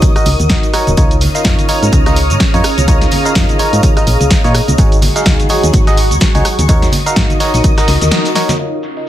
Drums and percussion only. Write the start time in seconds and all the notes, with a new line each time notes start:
0.02 kick, closed hi-hat, tambourine, high conga, shaker
0.16 cross-stick, closed hi-hat, tambourine, shaker
0.26 open hi-hat, tambourine, shaker
0.39 closed hi-hat, tambourine, high conga, shaker
0.49 kick, snare, closed hi-hat, tambourine, shaker
0.63 closed hi-hat, tambourine, shaker
0.74 cross-stick, open hi-hat, tambourine, shaker
0.87 closed hi-hat, tambourine, high conga, shaker
0.97 kick, closed hi-hat, tambourine, shaker
1.11 closed hi-hat, shaker
1.21 snare, open hi-hat, tambourine, high conga, shaker
1.35 snare, closed hi-hat, tambourine, shaker
1.44 kick, snare, closed hi-hat, tambourine, shaker
1.58 closed hi-hat, tambourine, high conga, shaker
1.69 open hi-hat, tambourine, shaker
1.82 closed hi-hat, tambourine, shaker
1.93 kick, closed hi-hat, tambourine, high conga, shaker
2.06 cross-stick, snare, closed hi-hat, tambourine, shaker
2.16 open hi-hat, tambourine, shaker
2.30 closed hi-hat, tambourine, high conga, shaker
2.40 kick, snare, closed hi-hat, tambourine, shaker
2.54 closed hi-hat, tambourine, shaker
2.64 cross-stick, open hi-hat, tambourine, shaker
2.78 closed hi-hat, tambourine, high conga, shaker
2.88 kick, closed hi-hat, tambourine, shaker
3.01 snare, closed hi-hat, shaker
3.11 snare, open hi-hat, tambourine, high conga, shaker
3.25 closed hi-hat, tambourine, shaker
3.35 kick, snare, closed hi-hat, tambourine, shaker
3.49 closed hi-hat, tambourine, high conga, shaker
3.59 open hi-hat, tambourine, shaker
3.73 closed hi-hat, tambourine, shaker
3.83 kick, closed hi-hat, tambourine, high conga, shaker
3.97 cross-stick, closed hi-hat, tambourine, shaker
4.07 open hi-hat, tambourine, shaker
4.20 closed hi-hat, tambourine, high conga, shaker
4.30 kick, snare, closed hi-hat, tambourine, shaker
4.44 closed hi-hat, tambourine, shaker
4.55 cross-stick, open hi-hat, tambourine, shaker
4.68 closed hi-hat, tambourine, high conga, shaker
4.78 kick, closed hi-hat, tambourine, shaker
4.92 closed hi-hat, shaker
5.02 snare, open hi-hat, tambourine, high conga, shaker
5.16 snare, closed hi-hat, shaker
5.25 kick, snare, closed hi-hat, tambourine, shaker
5.40 closed hi-hat, tambourine, high conga, shaker
5.49 open hi-hat, tambourine, shaker
5.63 closed hi-hat, tambourine, shaker
5.73 kick, closed hi-hat, tambourine, high conga, shaker
5.87 cross-stick, snare, closed hi-hat, tambourine, shaker
5.97 open hi-hat, tambourine, shaker
6.11 closed hi-hat, tambourine, high conga, shaker
6.20 kick, snare, closed hi-hat, tambourine, shaker
6.34 closed hi-hat, tambourine, shaker
6.45 cross-stick, open hi-hat, tambourine, shaker
6.59 closed hi-hat, tambourine, high conga, shaker
6.69 kick, closed hi-hat, tambourine, shaker
6.82 snare, closed hi-hat, tambourine, shaker
6.92 snare, open hi-hat, tambourine, high conga, shaker
7.06 closed hi-hat, tambourine, shaker
7.16 kick, snare, closed hi-hat, tambourine, shaker
7.30 closed hi-hat, tambourine, high conga, shaker
7.40 snare, open hi-hat, tambourine, shaker
7.54 open hi-hat, shaker
7.64 kick, closed hi-hat, tambourine, high conga, shaker
7.78 cross-stick, snare, closed hi-hat, tambourine, shaker
7.88 snare, open hi-hat, tambourine, shaker
8.02 snare, closed hi-hat, tambourine, high conga, shaker
8.11 snare, closed hi-hat, tambourine, shaker
8.25 snare, closed hi-hat, tambourine, shaker
8.35 snare, open hi-hat, tambourine, shaker
8.49 snare, closed hi-hat, tambourine, high conga, shaker
8.59 shaker
8.83 snare, closed hi-hat, shaker
8.97 snare, closed hi-hat